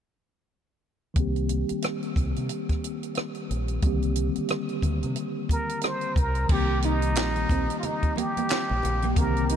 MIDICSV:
0, 0, Header, 1, 8, 480
1, 0, Start_track
1, 0, Key_signature, -3, "minor"
1, 0, Tempo, 666667
1, 837, Time_signature, 4, 2, 24, 8
1, 6885, End_track
2, 0, Start_track
2, 0, Title_t, "Muted trumpet"
2, 0, Program_c, 0, 59
2, 3976, Note_on_c, 0, 70, 67
2, 4221, Note_on_c, 0, 72, 71
2, 4232, Note_off_c, 0, 70, 0
2, 4459, Note_on_c, 0, 70, 76
2, 4470, Note_off_c, 0, 72, 0
2, 4693, Note_on_c, 0, 67, 78
2, 4703, Note_off_c, 0, 70, 0
2, 4934, Note_on_c, 0, 63, 76
2, 4945, Note_off_c, 0, 67, 0
2, 5606, Note_off_c, 0, 63, 0
2, 5612, Note_on_c, 0, 65, 52
2, 5653, Note_on_c, 0, 63, 77
2, 5664, Note_off_c, 0, 65, 0
2, 5894, Note_on_c, 0, 67, 80
2, 5905, Note_off_c, 0, 63, 0
2, 6612, Note_on_c, 0, 70, 87
2, 6623, Note_off_c, 0, 67, 0
2, 6848, Note_on_c, 0, 72, 89
2, 6859, Note_off_c, 0, 70, 0
2, 6885, Note_off_c, 0, 72, 0
2, 6885, End_track
3, 0, Start_track
3, 0, Title_t, "Clean electric guitar"
3, 0, Program_c, 1, 27
3, 4927, Note_on_c, 1, 63, 68
3, 5034, Note_off_c, 1, 63, 0
3, 5408, Note_on_c, 1, 60, 67
3, 5514, Note_off_c, 1, 60, 0
3, 5885, Note_on_c, 1, 58, 75
3, 5992, Note_off_c, 1, 58, 0
3, 6033, Note_on_c, 1, 58, 70
3, 6101, Note_off_c, 1, 58, 0
3, 6124, Note_on_c, 1, 60, 70
3, 6232, Note_off_c, 1, 60, 0
3, 6509, Note_on_c, 1, 58, 65
3, 6579, Note_off_c, 1, 58, 0
3, 6847, Note_on_c, 1, 63, 66
3, 6885, Note_off_c, 1, 63, 0
3, 6885, End_track
4, 0, Start_track
4, 0, Title_t, "Tine electric piano"
4, 0, Program_c, 2, 4
4, 821, Note_on_c, 2, 51, 63
4, 834, Note_on_c, 2, 55, 53
4, 844, Note_on_c, 2, 58, 55
4, 855, Note_on_c, 2, 60, 55
4, 865, Note_on_c, 2, 67, 65
4, 993, Control_c, 2, 64, 127
4, 2721, Note_off_c, 2, 51, 0
4, 2727, Note_off_c, 2, 55, 0
4, 2732, Note_off_c, 2, 58, 0
4, 2737, Note_off_c, 2, 60, 0
4, 2743, Note_off_c, 2, 67, 0
4, 2745, Note_on_c, 2, 50, 48
4, 2755, Note_on_c, 2, 55, 59
4, 2766, Note_on_c, 2, 58, 54
4, 2776, Note_on_c, 2, 60, 57
4, 2789, Note_on_c, 2, 67, 67
4, 2792, Note_on_c, 2, 51, 64
4, 2808, Note_off_c, 2, 50, 0
4, 4407, Note_off_c, 2, 55, 0
4, 4413, Note_off_c, 2, 58, 0
4, 4418, Note_off_c, 2, 60, 0
4, 4424, Note_off_c, 2, 67, 0
4, 4426, Note_off_c, 2, 51, 0
4, 4446, Control_c, 2, 64, 0
4, 4661, Note_on_c, 2, 51, 58
4, 4674, Note_on_c, 2, 55, 55
4, 4684, Note_on_c, 2, 58, 53
4, 4696, Note_on_c, 2, 60, 54
4, 4706, Note_on_c, 2, 67, 67
4, 4825, Control_c, 2, 64, 127
4, 6561, Note_off_c, 2, 51, 0
4, 6567, Note_off_c, 2, 55, 0
4, 6572, Note_off_c, 2, 58, 0
4, 6578, Note_off_c, 2, 60, 0
4, 6583, Note_off_c, 2, 67, 0
4, 6586, Note_on_c, 2, 50, 46
4, 6596, Note_on_c, 2, 55, 57
4, 6608, Note_on_c, 2, 58, 58
4, 6620, Note_on_c, 2, 60, 53
4, 6630, Note_on_c, 2, 67, 65
4, 6634, Note_on_c, 2, 51, 60
4, 6648, Note_off_c, 2, 50, 0
4, 6885, Note_off_c, 2, 51, 0
4, 6885, Note_off_c, 2, 55, 0
4, 6885, Note_off_c, 2, 58, 0
4, 6885, Note_off_c, 2, 60, 0
4, 6885, Note_off_c, 2, 67, 0
4, 6885, End_track
5, 0, Start_track
5, 0, Title_t, "Fingered electric bass"
5, 0, Program_c, 3, 33
5, 840, Note_on_c, 3, 36, 74
5, 1166, Note_off_c, 3, 36, 0
5, 1561, Note_on_c, 3, 36, 66
5, 1682, Note_off_c, 3, 36, 0
5, 1709, Note_on_c, 3, 48, 64
5, 1787, Note_off_c, 3, 48, 0
5, 2524, Note_on_c, 3, 34, 70
5, 2725, Note_off_c, 3, 34, 0
5, 2759, Note_on_c, 3, 36, 80
5, 3085, Note_off_c, 3, 36, 0
5, 3478, Note_on_c, 3, 38, 74
5, 3601, Note_off_c, 3, 38, 0
5, 3628, Note_on_c, 3, 48, 78
5, 3706, Note_off_c, 3, 48, 0
5, 4440, Note_on_c, 3, 36, 85
5, 4643, Note_off_c, 3, 36, 0
5, 4680, Note_on_c, 3, 36, 81
5, 5164, Note_off_c, 3, 36, 0
5, 5164, Note_on_c, 3, 34, 81
5, 5365, Note_off_c, 3, 34, 0
5, 5400, Note_on_c, 3, 34, 79
5, 5522, Note_off_c, 3, 34, 0
5, 6270, Note_on_c, 3, 34, 81
5, 6348, Note_off_c, 3, 34, 0
5, 6368, Note_on_c, 3, 34, 80
5, 6567, Note_off_c, 3, 34, 0
5, 6602, Note_on_c, 3, 36, 96
5, 6885, Note_off_c, 3, 36, 0
5, 6885, End_track
6, 0, Start_track
6, 0, Title_t, "Muted clean electric guitar strokes"
6, 5650, Note_on_c, 9, 29, 40
6, 5722, Note_off_c, 9, 29, 0
6, 6370, Note_on_c, 9, 29, 40
6, 6442, Note_off_c, 9, 29, 0
6, 6885, End_track
7, 0, Start_track
7, 0, Title_t, "Muted fingered electric bass strokes"
7, 1231, Note_on_c, 9, 29, 39
7, 1303, Note_off_c, 9, 29, 0
7, 3150, Note_on_c, 9, 29, 38
7, 3222, Note_off_c, 9, 29, 0
7, 6885, End_track
8, 0, Start_track
8, 0, Title_t, "Drums"
8, 833, Note_on_c, 9, 42, 63
8, 835, Note_on_c, 9, 36, 88
8, 905, Note_off_c, 9, 42, 0
8, 907, Note_off_c, 9, 36, 0
8, 979, Note_on_c, 9, 42, 29
8, 1051, Note_off_c, 9, 42, 0
8, 1074, Note_on_c, 9, 42, 61
8, 1146, Note_off_c, 9, 42, 0
8, 1217, Note_on_c, 9, 42, 39
8, 1289, Note_off_c, 9, 42, 0
8, 1313, Note_on_c, 9, 42, 69
8, 1328, Note_on_c, 9, 37, 99
8, 1385, Note_off_c, 9, 42, 0
8, 1400, Note_off_c, 9, 37, 0
8, 1458, Note_on_c, 9, 42, 28
8, 1530, Note_off_c, 9, 42, 0
8, 1556, Note_on_c, 9, 36, 79
8, 1562, Note_on_c, 9, 42, 49
8, 1628, Note_off_c, 9, 36, 0
8, 1634, Note_off_c, 9, 42, 0
8, 1702, Note_on_c, 9, 42, 42
8, 1774, Note_off_c, 9, 42, 0
8, 1793, Note_on_c, 9, 42, 62
8, 1865, Note_off_c, 9, 42, 0
8, 1938, Note_on_c, 9, 42, 30
8, 1939, Note_on_c, 9, 36, 68
8, 1953, Note_on_c, 9, 37, 30
8, 2010, Note_off_c, 9, 42, 0
8, 2011, Note_off_c, 9, 36, 0
8, 2025, Note_off_c, 9, 37, 0
8, 2045, Note_on_c, 9, 42, 58
8, 2117, Note_off_c, 9, 42, 0
8, 2181, Note_on_c, 9, 42, 39
8, 2253, Note_off_c, 9, 42, 0
8, 2267, Note_on_c, 9, 42, 57
8, 2286, Note_on_c, 9, 37, 90
8, 2339, Note_off_c, 9, 42, 0
8, 2358, Note_off_c, 9, 37, 0
8, 2409, Note_on_c, 9, 42, 29
8, 2481, Note_off_c, 9, 42, 0
8, 2525, Note_on_c, 9, 42, 46
8, 2597, Note_off_c, 9, 42, 0
8, 2650, Note_on_c, 9, 42, 34
8, 2722, Note_off_c, 9, 42, 0
8, 2752, Note_on_c, 9, 42, 62
8, 2755, Note_on_c, 9, 36, 89
8, 2824, Note_off_c, 9, 42, 0
8, 2827, Note_off_c, 9, 36, 0
8, 2898, Note_on_c, 9, 42, 29
8, 2970, Note_off_c, 9, 42, 0
8, 2992, Note_on_c, 9, 42, 62
8, 3064, Note_off_c, 9, 42, 0
8, 3136, Note_on_c, 9, 42, 41
8, 3208, Note_off_c, 9, 42, 0
8, 3229, Note_on_c, 9, 42, 70
8, 3245, Note_on_c, 9, 37, 103
8, 3301, Note_off_c, 9, 42, 0
8, 3317, Note_off_c, 9, 37, 0
8, 3375, Note_on_c, 9, 42, 26
8, 3447, Note_off_c, 9, 42, 0
8, 3474, Note_on_c, 9, 36, 80
8, 3477, Note_on_c, 9, 42, 54
8, 3546, Note_off_c, 9, 36, 0
8, 3549, Note_off_c, 9, 42, 0
8, 3620, Note_on_c, 9, 42, 40
8, 3692, Note_off_c, 9, 42, 0
8, 3712, Note_on_c, 9, 42, 68
8, 3784, Note_off_c, 9, 42, 0
8, 3955, Note_on_c, 9, 36, 75
8, 3964, Note_on_c, 9, 42, 61
8, 4027, Note_off_c, 9, 36, 0
8, 4036, Note_off_c, 9, 42, 0
8, 4100, Note_on_c, 9, 42, 40
8, 4172, Note_off_c, 9, 42, 0
8, 4186, Note_on_c, 9, 42, 61
8, 4205, Note_on_c, 9, 37, 96
8, 4258, Note_off_c, 9, 42, 0
8, 4277, Note_off_c, 9, 37, 0
8, 4328, Note_on_c, 9, 42, 29
8, 4400, Note_off_c, 9, 42, 0
8, 4435, Note_on_c, 9, 36, 87
8, 4443, Note_on_c, 9, 42, 46
8, 4507, Note_off_c, 9, 36, 0
8, 4515, Note_off_c, 9, 42, 0
8, 4571, Note_on_c, 9, 42, 34
8, 4643, Note_off_c, 9, 42, 0
8, 4674, Note_on_c, 9, 49, 77
8, 4675, Note_on_c, 9, 36, 103
8, 4680, Note_on_c, 9, 62, 27
8, 4746, Note_off_c, 9, 49, 0
8, 4747, Note_off_c, 9, 36, 0
8, 4752, Note_off_c, 9, 62, 0
8, 4913, Note_on_c, 9, 42, 72
8, 4985, Note_off_c, 9, 42, 0
8, 5054, Note_on_c, 9, 42, 45
8, 5126, Note_off_c, 9, 42, 0
8, 5151, Note_on_c, 9, 42, 76
8, 5164, Note_on_c, 9, 39, 83
8, 5167, Note_on_c, 9, 38, 113
8, 5223, Note_off_c, 9, 42, 0
8, 5236, Note_off_c, 9, 39, 0
8, 5239, Note_off_c, 9, 38, 0
8, 5297, Note_on_c, 9, 42, 29
8, 5305, Note_on_c, 9, 62, 27
8, 5369, Note_off_c, 9, 42, 0
8, 5377, Note_off_c, 9, 62, 0
8, 5396, Note_on_c, 9, 36, 89
8, 5396, Note_on_c, 9, 64, 57
8, 5402, Note_on_c, 9, 42, 57
8, 5468, Note_off_c, 9, 36, 0
8, 5468, Note_off_c, 9, 64, 0
8, 5474, Note_off_c, 9, 42, 0
8, 5543, Note_on_c, 9, 42, 46
8, 5615, Note_off_c, 9, 42, 0
8, 5636, Note_on_c, 9, 42, 71
8, 5640, Note_on_c, 9, 64, 58
8, 5708, Note_off_c, 9, 42, 0
8, 5712, Note_off_c, 9, 64, 0
8, 5779, Note_on_c, 9, 42, 32
8, 5781, Note_on_c, 9, 36, 75
8, 5851, Note_off_c, 9, 42, 0
8, 5853, Note_off_c, 9, 36, 0
8, 5874, Note_on_c, 9, 63, 59
8, 5889, Note_on_c, 9, 42, 70
8, 5946, Note_off_c, 9, 63, 0
8, 5961, Note_off_c, 9, 42, 0
8, 6027, Note_on_c, 9, 42, 43
8, 6027, Note_on_c, 9, 63, 62
8, 6099, Note_off_c, 9, 42, 0
8, 6099, Note_off_c, 9, 63, 0
8, 6112, Note_on_c, 9, 42, 65
8, 6128, Note_on_c, 9, 39, 81
8, 6131, Note_on_c, 9, 38, 97
8, 6184, Note_off_c, 9, 42, 0
8, 6200, Note_off_c, 9, 39, 0
8, 6203, Note_off_c, 9, 38, 0
8, 6260, Note_on_c, 9, 62, 27
8, 6332, Note_off_c, 9, 62, 0
8, 6359, Note_on_c, 9, 64, 64
8, 6369, Note_on_c, 9, 42, 50
8, 6431, Note_off_c, 9, 64, 0
8, 6441, Note_off_c, 9, 42, 0
8, 6496, Note_on_c, 9, 42, 37
8, 6502, Note_on_c, 9, 63, 58
8, 6568, Note_off_c, 9, 42, 0
8, 6574, Note_off_c, 9, 63, 0
8, 6598, Note_on_c, 9, 36, 99
8, 6598, Note_on_c, 9, 42, 71
8, 6670, Note_off_c, 9, 36, 0
8, 6670, Note_off_c, 9, 42, 0
8, 6743, Note_on_c, 9, 42, 32
8, 6752, Note_on_c, 9, 62, 27
8, 6815, Note_off_c, 9, 42, 0
8, 6824, Note_off_c, 9, 62, 0
8, 6835, Note_on_c, 9, 42, 69
8, 6885, Note_off_c, 9, 42, 0
8, 6885, End_track
0, 0, End_of_file